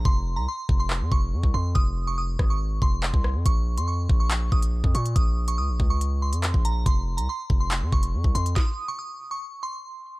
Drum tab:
HH |----------------|----------------|x--x----x--x--xx|x--x----x--xx-x-|
CP |--------x-------|------------x---|--------x-------|------------x---|
SD |----------------|------r-------r-|----------------|----------------|
BD |o-----o---o--o--|o-----o---o--o--|o-----o---o--o--|o-----o------o--|

HH |x--x----x--x--xx|----------------|
CP |--------x-------|----------------|
SD |----------------|o---------------|
BD |o-----o---o--o--|o---------------|